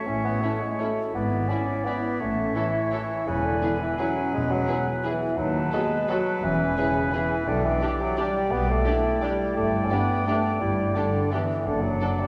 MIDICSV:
0, 0, Header, 1, 11, 480
1, 0, Start_track
1, 0, Tempo, 356295
1, 105, Time_signature, 3, 2, 24, 8
1, 5390, Tempo, 347625
1, 14990, Tempo, 357782
1, 16756, End_track
2, 0, Start_track
2, 0, Title_t, "Flute"
2, 0, Program_c, 0, 73
2, 0, Note_on_c, 0, 76, 61
2, 1176, Note_off_c, 0, 76, 0
2, 1543, Note_on_c, 0, 76, 60
2, 4414, Note_on_c, 0, 80, 58
2, 4434, Note_off_c, 0, 76, 0
2, 6961, Note_off_c, 0, 80, 0
2, 7304, Note_on_c, 0, 81, 68
2, 8778, Note_on_c, 0, 80, 72
2, 8799, Note_off_c, 0, 81, 0
2, 10198, Note_on_c, 0, 79, 67
2, 10219, Note_off_c, 0, 80, 0
2, 13080, Note_off_c, 0, 79, 0
2, 13086, Note_on_c, 0, 79, 75
2, 15566, Note_off_c, 0, 79, 0
2, 15944, Note_on_c, 0, 78, 62
2, 16756, Note_off_c, 0, 78, 0
2, 16756, End_track
3, 0, Start_track
3, 0, Title_t, "Oboe"
3, 0, Program_c, 1, 68
3, 0, Note_on_c, 1, 73, 49
3, 1487, Note_off_c, 1, 73, 0
3, 1555, Note_on_c, 1, 74, 56
3, 2971, Note_on_c, 1, 73, 52
3, 2991, Note_off_c, 1, 74, 0
3, 4412, Note_off_c, 1, 73, 0
3, 4420, Note_on_c, 1, 71, 60
3, 6913, Note_off_c, 1, 71, 0
3, 7299, Note_on_c, 1, 71, 68
3, 10195, Note_on_c, 1, 74, 62
3, 10215, Note_off_c, 1, 71, 0
3, 13078, Note_off_c, 1, 74, 0
3, 13084, Note_on_c, 1, 74, 65
3, 15565, Note_off_c, 1, 74, 0
3, 15953, Note_on_c, 1, 74, 66
3, 16756, Note_off_c, 1, 74, 0
3, 16756, End_track
4, 0, Start_track
4, 0, Title_t, "Violin section"
4, 0, Program_c, 2, 48
4, 593, Note_on_c, 2, 73, 47
4, 701, Note_off_c, 2, 73, 0
4, 1068, Note_on_c, 2, 73, 47
4, 1176, Note_off_c, 2, 73, 0
4, 2014, Note_on_c, 2, 74, 45
4, 2122, Note_off_c, 2, 74, 0
4, 2518, Note_on_c, 2, 74, 51
4, 2625, Note_off_c, 2, 74, 0
4, 3452, Note_on_c, 2, 73, 52
4, 3560, Note_off_c, 2, 73, 0
4, 3935, Note_on_c, 2, 73, 57
4, 4043, Note_off_c, 2, 73, 0
4, 4880, Note_on_c, 2, 71, 51
4, 4988, Note_off_c, 2, 71, 0
4, 5380, Note_on_c, 2, 71, 55
4, 5491, Note_off_c, 2, 71, 0
4, 6309, Note_on_c, 2, 71, 54
4, 6420, Note_off_c, 2, 71, 0
4, 6817, Note_on_c, 2, 71, 56
4, 6928, Note_off_c, 2, 71, 0
4, 7775, Note_on_c, 2, 71, 57
4, 7885, Note_off_c, 2, 71, 0
4, 8278, Note_on_c, 2, 71, 63
4, 8388, Note_off_c, 2, 71, 0
4, 9211, Note_on_c, 2, 71, 65
4, 9322, Note_off_c, 2, 71, 0
4, 9706, Note_on_c, 2, 71, 62
4, 9816, Note_off_c, 2, 71, 0
4, 10642, Note_on_c, 2, 74, 56
4, 10752, Note_off_c, 2, 74, 0
4, 11137, Note_on_c, 2, 74, 69
4, 11247, Note_off_c, 2, 74, 0
4, 12096, Note_on_c, 2, 74, 62
4, 12206, Note_off_c, 2, 74, 0
4, 12596, Note_on_c, 2, 74, 57
4, 12707, Note_off_c, 2, 74, 0
4, 13535, Note_on_c, 2, 74, 61
4, 13646, Note_off_c, 2, 74, 0
4, 14038, Note_on_c, 2, 74, 58
4, 14149, Note_off_c, 2, 74, 0
4, 14985, Note_on_c, 2, 74, 61
4, 15093, Note_off_c, 2, 74, 0
4, 15473, Note_on_c, 2, 74, 57
4, 15580, Note_off_c, 2, 74, 0
4, 16394, Note_on_c, 2, 74, 53
4, 16502, Note_off_c, 2, 74, 0
4, 16756, End_track
5, 0, Start_track
5, 0, Title_t, "Violin section"
5, 0, Program_c, 3, 48
5, 589, Note_on_c, 3, 64, 50
5, 697, Note_off_c, 3, 64, 0
5, 1076, Note_on_c, 3, 64, 45
5, 1184, Note_off_c, 3, 64, 0
5, 2030, Note_on_c, 3, 64, 46
5, 2137, Note_off_c, 3, 64, 0
5, 2519, Note_on_c, 3, 64, 43
5, 2627, Note_off_c, 3, 64, 0
5, 3450, Note_on_c, 3, 69, 50
5, 3557, Note_off_c, 3, 69, 0
5, 3937, Note_on_c, 3, 69, 46
5, 4044, Note_off_c, 3, 69, 0
5, 4879, Note_on_c, 3, 68, 49
5, 4987, Note_off_c, 3, 68, 0
5, 5379, Note_on_c, 3, 68, 49
5, 5489, Note_off_c, 3, 68, 0
5, 6325, Note_on_c, 3, 68, 55
5, 6436, Note_off_c, 3, 68, 0
5, 6825, Note_on_c, 3, 68, 50
5, 6935, Note_off_c, 3, 68, 0
5, 7781, Note_on_c, 3, 69, 61
5, 7891, Note_off_c, 3, 69, 0
5, 8282, Note_on_c, 3, 69, 59
5, 8392, Note_off_c, 3, 69, 0
5, 9230, Note_on_c, 3, 68, 59
5, 9341, Note_off_c, 3, 68, 0
5, 9726, Note_on_c, 3, 68, 52
5, 9836, Note_off_c, 3, 68, 0
5, 10672, Note_on_c, 3, 67, 60
5, 10783, Note_off_c, 3, 67, 0
5, 11158, Note_on_c, 3, 67, 54
5, 11268, Note_off_c, 3, 67, 0
5, 12103, Note_on_c, 3, 67, 62
5, 12214, Note_off_c, 3, 67, 0
5, 12619, Note_on_c, 3, 67, 53
5, 12729, Note_off_c, 3, 67, 0
5, 13564, Note_on_c, 3, 67, 53
5, 13674, Note_off_c, 3, 67, 0
5, 14055, Note_on_c, 3, 67, 54
5, 14166, Note_off_c, 3, 67, 0
5, 15001, Note_on_c, 3, 67, 54
5, 15108, Note_off_c, 3, 67, 0
5, 15499, Note_on_c, 3, 67, 53
5, 15606, Note_off_c, 3, 67, 0
5, 16410, Note_on_c, 3, 69, 50
5, 16517, Note_off_c, 3, 69, 0
5, 16756, End_track
6, 0, Start_track
6, 0, Title_t, "Viola section"
6, 0, Program_c, 4, 48
6, 595, Note_on_c, 4, 61, 46
6, 703, Note_off_c, 4, 61, 0
6, 1079, Note_on_c, 4, 61, 47
6, 1187, Note_off_c, 4, 61, 0
6, 2036, Note_on_c, 4, 64, 54
6, 2144, Note_off_c, 4, 64, 0
6, 2519, Note_on_c, 4, 64, 45
6, 2626, Note_off_c, 4, 64, 0
6, 3442, Note_on_c, 4, 64, 53
6, 3549, Note_off_c, 4, 64, 0
6, 3945, Note_on_c, 4, 64, 58
6, 4053, Note_off_c, 4, 64, 0
6, 4889, Note_on_c, 4, 64, 49
6, 4997, Note_off_c, 4, 64, 0
6, 5400, Note_on_c, 4, 64, 51
6, 5510, Note_off_c, 4, 64, 0
6, 6334, Note_on_c, 4, 64, 59
6, 6444, Note_off_c, 4, 64, 0
6, 6824, Note_on_c, 4, 64, 59
6, 6935, Note_off_c, 4, 64, 0
6, 7788, Note_on_c, 4, 66, 59
6, 7898, Note_off_c, 4, 66, 0
6, 8297, Note_on_c, 4, 66, 64
6, 8408, Note_off_c, 4, 66, 0
6, 9245, Note_on_c, 4, 64, 56
6, 9355, Note_off_c, 4, 64, 0
6, 9737, Note_on_c, 4, 64, 59
6, 9848, Note_off_c, 4, 64, 0
6, 10675, Note_on_c, 4, 62, 62
6, 10786, Note_off_c, 4, 62, 0
6, 11165, Note_on_c, 4, 62, 62
6, 11276, Note_off_c, 4, 62, 0
6, 12105, Note_on_c, 4, 62, 64
6, 12215, Note_off_c, 4, 62, 0
6, 12605, Note_on_c, 4, 62, 58
6, 12715, Note_off_c, 4, 62, 0
6, 13561, Note_on_c, 4, 62, 59
6, 13671, Note_off_c, 4, 62, 0
6, 14070, Note_on_c, 4, 62, 58
6, 14181, Note_off_c, 4, 62, 0
6, 15006, Note_on_c, 4, 62, 58
6, 15113, Note_off_c, 4, 62, 0
6, 15505, Note_on_c, 4, 62, 57
6, 15612, Note_off_c, 4, 62, 0
6, 16428, Note_on_c, 4, 62, 54
6, 16535, Note_off_c, 4, 62, 0
6, 16756, End_track
7, 0, Start_track
7, 0, Title_t, "Clarinet"
7, 0, Program_c, 5, 71
7, 101, Note_on_c, 5, 64, 56
7, 1076, Note_off_c, 5, 64, 0
7, 1082, Note_on_c, 5, 66, 57
7, 1535, Note_on_c, 5, 64, 67
7, 1555, Note_off_c, 5, 66, 0
7, 2014, Note_off_c, 5, 64, 0
7, 2021, Note_on_c, 5, 64, 57
7, 2980, Note_on_c, 5, 61, 66
7, 3001, Note_off_c, 5, 64, 0
7, 3442, Note_on_c, 5, 64, 64
7, 3462, Note_off_c, 5, 61, 0
7, 4413, Note_off_c, 5, 64, 0
7, 4421, Note_on_c, 5, 64, 66
7, 4876, Note_on_c, 5, 59, 57
7, 4896, Note_off_c, 5, 64, 0
7, 5387, Note_on_c, 5, 61, 68
7, 5408, Note_off_c, 5, 59, 0
7, 6323, Note_on_c, 5, 59, 59
7, 6344, Note_off_c, 5, 61, 0
7, 7276, Note_off_c, 5, 59, 0
7, 7284, Note_on_c, 5, 63, 75
7, 7766, Note_off_c, 5, 63, 0
7, 7782, Note_on_c, 5, 59, 64
7, 8419, Note_off_c, 5, 59, 0
7, 8762, Note_on_c, 5, 61, 80
7, 9669, Note_off_c, 5, 61, 0
7, 9707, Note_on_c, 5, 59, 59
7, 10161, Note_off_c, 5, 59, 0
7, 10170, Note_on_c, 5, 62, 75
7, 10643, Note_off_c, 5, 62, 0
7, 10653, Note_on_c, 5, 67, 76
7, 12082, Note_on_c, 5, 64, 84
7, 12103, Note_off_c, 5, 67, 0
7, 13565, Note_on_c, 5, 62, 65
7, 13586, Note_off_c, 5, 64, 0
7, 14034, Note_off_c, 5, 62, 0
7, 14042, Note_on_c, 5, 62, 66
7, 14502, Note_off_c, 5, 62, 0
7, 14513, Note_on_c, 5, 64, 73
7, 14991, Note_on_c, 5, 62, 63
7, 15011, Note_off_c, 5, 64, 0
7, 15493, Note_on_c, 5, 59, 66
7, 15513, Note_off_c, 5, 62, 0
7, 15956, Note_on_c, 5, 62, 77
7, 15976, Note_off_c, 5, 59, 0
7, 16756, Note_off_c, 5, 62, 0
7, 16756, End_track
8, 0, Start_track
8, 0, Title_t, "Bassoon"
8, 0, Program_c, 6, 70
8, 99, Note_on_c, 6, 61, 76
8, 322, Note_off_c, 6, 61, 0
8, 330, Note_on_c, 6, 59, 66
8, 564, Note_on_c, 6, 57, 72
8, 585, Note_off_c, 6, 59, 0
8, 828, Note_on_c, 6, 56, 65
8, 848, Note_off_c, 6, 57, 0
8, 1070, Note_on_c, 6, 57, 69
8, 1091, Note_off_c, 6, 56, 0
8, 1539, Note_off_c, 6, 57, 0
8, 1545, Note_on_c, 6, 59, 73
8, 2017, Note_on_c, 6, 61, 74
8, 2037, Note_off_c, 6, 59, 0
8, 2496, Note_on_c, 6, 59, 73
8, 2516, Note_off_c, 6, 61, 0
8, 2966, Note_off_c, 6, 59, 0
8, 2971, Note_on_c, 6, 57, 69
8, 3433, Note_off_c, 6, 57, 0
8, 3441, Note_on_c, 6, 52, 75
8, 3915, Note_off_c, 6, 52, 0
8, 3923, Note_on_c, 6, 52, 70
8, 4397, Note_off_c, 6, 52, 0
8, 4403, Note_on_c, 6, 49, 86
8, 4645, Note_on_c, 6, 50, 69
8, 4666, Note_off_c, 6, 49, 0
8, 5127, Note_on_c, 6, 52, 75
8, 5148, Note_off_c, 6, 50, 0
8, 5374, Note_off_c, 6, 52, 0
8, 5382, Note_on_c, 6, 54, 79
8, 5846, Note_off_c, 6, 54, 0
8, 5864, Note_on_c, 6, 56, 90
8, 6089, Note_on_c, 6, 54, 83
8, 6110, Note_off_c, 6, 56, 0
8, 6576, Note_off_c, 6, 54, 0
8, 6831, Note_on_c, 6, 52, 78
8, 7280, Note_on_c, 6, 54, 91
8, 7300, Note_off_c, 6, 52, 0
8, 7773, Note_off_c, 6, 54, 0
8, 7783, Note_on_c, 6, 56, 86
8, 8287, Note_on_c, 6, 54, 89
8, 8307, Note_off_c, 6, 56, 0
8, 8757, Note_on_c, 6, 52, 92
8, 8778, Note_off_c, 6, 54, 0
8, 9217, Note_off_c, 6, 52, 0
8, 9225, Note_on_c, 6, 49, 75
8, 9723, Note_on_c, 6, 52, 89
8, 9744, Note_off_c, 6, 49, 0
8, 10200, Note_on_c, 6, 50, 96
8, 10220, Note_off_c, 6, 52, 0
8, 10414, Note_off_c, 6, 50, 0
8, 10422, Note_on_c, 6, 52, 84
8, 10928, Note_on_c, 6, 54, 83
8, 10949, Note_off_c, 6, 52, 0
8, 11152, Note_off_c, 6, 54, 0
8, 11160, Note_on_c, 6, 55, 86
8, 11615, Note_on_c, 6, 59, 95
8, 11636, Note_off_c, 6, 55, 0
8, 11877, Note_on_c, 6, 57, 98
8, 11898, Note_off_c, 6, 59, 0
8, 12603, Note_on_c, 6, 55, 84
8, 12624, Note_off_c, 6, 57, 0
8, 13063, Note_off_c, 6, 55, 0
8, 13072, Note_on_c, 6, 57, 87
8, 13465, Note_on_c, 6, 61, 63
8, 13486, Note_off_c, 6, 57, 0
8, 13560, Note_on_c, 6, 59, 88
8, 13581, Note_off_c, 6, 61, 0
8, 14043, Note_off_c, 6, 59, 0
8, 14052, Note_on_c, 6, 57, 81
8, 14506, Note_on_c, 6, 55, 82
8, 14527, Note_off_c, 6, 57, 0
8, 14989, Note_on_c, 6, 50, 76
8, 15009, Note_off_c, 6, 55, 0
8, 15480, Note_on_c, 6, 52, 85
8, 15500, Note_off_c, 6, 50, 0
8, 15945, Note_on_c, 6, 50, 73
8, 15965, Note_off_c, 6, 52, 0
8, 16161, Note_on_c, 6, 54, 79
8, 16181, Note_off_c, 6, 50, 0
8, 16657, Note_on_c, 6, 55, 74
8, 16678, Note_off_c, 6, 54, 0
8, 16756, Note_off_c, 6, 55, 0
8, 16756, End_track
9, 0, Start_track
9, 0, Title_t, "French horn section"
9, 0, Program_c, 7, 60
9, 83, Note_on_c, 7, 61, 63
9, 316, Note_on_c, 7, 59, 55
9, 326, Note_off_c, 7, 61, 0
9, 549, Note_on_c, 7, 57, 59
9, 567, Note_off_c, 7, 59, 0
9, 816, Note_off_c, 7, 57, 0
9, 830, Note_on_c, 7, 56, 57
9, 1076, Note_off_c, 7, 56, 0
9, 1076, Note_on_c, 7, 57, 62
9, 1525, Note_on_c, 7, 59, 64
9, 1542, Note_off_c, 7, 57, 0
9, 2009, Note_off_c, 7, 59, 0
9, 2026, Note_on_c, 7, 61, 71
9, 2501, Note_on_c, 7, 59, 69
9, 2512, Note_off_c, 7, 61, 0
9, 2959, Note_off_c, 7, 59, 0
9, 2986, Note_on_c, 7, 57, 65
9, 3452, Note_on_c, 7, 52, 65
9, 3454, Note_off_c, 7, 57, 0
9, 3916, Note_off_c, 7, 52, 0
9, 3933, Note_on_c, 7, 52, 72
9, 4402, Note_off_c, 7, 52, 0
9, 4413, Note_on_c, 7, 49, 65
9, 4636, Note_on_c, 7, 50, 53
9, 4646, Note_off_c, 7, 49, 0
9, 5138, Note_off_c, 7, 50, 0
9, 5147, Note_on_c, 7, 52, 62
9, 5387, Note_on_c, 7, 54, 71
9, 5392, Note_off_c, 7, 52, 0
9, 5838, Note_on_c, 7, 56, 74
9, 5859, Note_off_c, 7, 54, 0
9, 6073, Note_off_c, 7, 56, 0
9, 6075, Note_on_c, 7, 54, 74
9, 6832, Note_off_c, 7, 54, 0
9, 6843, Note_on_c, 7, 52, 76
9, 7299, Note_on_c, 7, 54, 69
9, 7309, Note_off_c, 7, 52, 0
9, 7763, Note_on_c, 7, 56, 78
9, 7783, Note_off_c, 7, 54, 0
9, 8253, Note_on_c, 7, 54, 82
9, 8276, Note_off_c, 7, 56, 0
9, 8739, Note_on_c, 7, 52, 79
9, 8740, Note_off_c, 7, 54, 0
9, 9199, Note_on_c, 7, 49, 76
9, 9209, Note_off_c, 7, 52, 0
9, 9702, Note_on_c, 7, 52, 74
9, 9707, Note_off_c, 7, 49, 0
9, 10158, Note_on_c, 7, 50, 77
9, 10170, Note_off_c, 7, 52, 0
9, 10399, Note_off_c, 7, 50, 0
9, 10405, Note_on_c, 7, 52, 64
9, 10893, Note_off_c, 7, 52, 0
9, 10912, Note_on_c, 7, 54, 76
9, 11144, Note_on_c, 7, 55, 88
9, 11154, Note_off_c, 7, 54, 0
9, 11613, Note_on_c, 7, 59, 83
9, 11618, Note_off_c, 7, 55, 0
9, 11826, Note_on_c, 7, 57, 71
9, 11851, Note_off_c, 7, 59, 0
9, 12571, Note_on_c, 7, 55, 86
9, 12590, Note_off_c, 7, 57, 0
9, 13058, Note_off_c, 7, 55, 0
9, 13062, Note_on_c, 7, 57, 74
9, 13533, Note_off_c, 7, 57, 0
9, 13554, Note_on_c, 7, 59, 83
9, 14037, Note_off_c, 7, 59, 0
9, 14047, Note_on_c, 7, 57, 75
9, 14505, Note_off_c, 7, 57, 0
9, 14507, Note_on_c, 7, 55, 66
9, 14987, Note_off_c, 7, 55, 0
9, 14997, Note_on_c, 7, 50, 68
9, 15482, Note_off_c, 7, 50, 0
9, 15489, Note_on_c, 7, 52, 72
9, 15942, Note_off_c, 7, 52, 0
9, 15950, Note_on_c, 7, 50, 60
9, 16052, Note_off_c, 7, 50, 0
9, 16184, Note_on_c, 7, 54, 60
9, 16662, Note_off_c, 7, 54, 0
9, 16665, Note_on_c, 7, 55, 58
9, 16756, Note_off_c, 7, 55, 0
9, 16756, End_track
10, 0, Start_track
10, 0, Title_t, "Cello section"
10, 0, Program_c, 8, 48
10, 109, Note_on_c, 8, 45, 52
10, 502, Note_off_c, 8, 45, 0
10, 1541, Note_on_c, 8, 44, 53
10, 1933, Note_off_c, 8, 44, 0
10, 2971, Note_on_c, 8, 45, 51
10, 3363, Note_off_c, 8, 45, 0
10, 4414, Note_on_c, 8, 40, 52
10, 4808, Note_off_c, 8, 40, 0
10, 5861, Note_on_c, 8, 40, 62
10, 6251, Note_off_c, 8, 40, 0
10, 7300, Note_on_c, 8, 39, 66
10, 7699, Note_off_c, 8, 39, 0
10, 8750, Note_on_c, 8, 40, 69
10, 9142, Note_off_c, 8, 40, 0
10, 10187, Note_on_c, 8, 47, 65
10, 10578, Note_off_c, 8, 47, 0
10, 11634, Note_on_c, 8, 47, 60
10, 12025, Note_off_c, 8, 47, 0
10, 13084, Note_on_c, 8, 43, 61
10, 13471, Note_off_c, 8, 43, 0
10, 14520, Note_on_c, 8, 43, 61
10, 14909, Note_off_c, 8, 43, 0
10, 15954, Note_on_c, 8, 42, 66
10, 16339, Note_off_c, 8, 42, 0
10, 16756, End_track
11, 0, Start_track
11, 0, Title_t, "Double bass section"
11, 0, Program_c, 10, 48
11, 110, Note_on_c, 10, 33, 56
11, 503, Note_off_c, 10, 33, 0
11, 1543, Note_on_c, 10, 32, 66
11, 1934, Note_off_c, 10, 32, 0
11, 2984, Note_on_c, 10, 33, 58
11, 3370, Note_off_c, 10, 33, 0
11, 4409, Note_on_c, 10, 28, 60
11, 4805, Note_off_c, 10, 28, 0
11, 5843, Note_on_c, 10, 28, 68
11, 6242, Note_off_c, 10, 28, 0
11, 7282, Note_on_c, 10, 39, 69
11, 7690, Note_off_c, 10, 39, 0
11, 8744, Note_on_c, 10, 28, 68
11, 9139, Note_off_c, 10, 28, 0
11, 10181, Note_on_c, 10, 35, 75
11, 10575, Note_off_c, 10, 35, 0
11, 11624, Note_on_c, 10, 35, 71
11, 12020, Note_off_c, 10, 35, 0
11, 13084, Note_on_c, 10, 31, 73
11, 13471, Note_off_c, 10, 31, 0
11, 14513, Note_on_c, 10, 31, 74
11, 14906, Note_off_c, 10, 31, 0
11, 15938, Note_on_c, 10, 30, 69
11, 16330, Note_off_c, 10, 30, 0
11, 16756, End_track
0, 0, End_of_file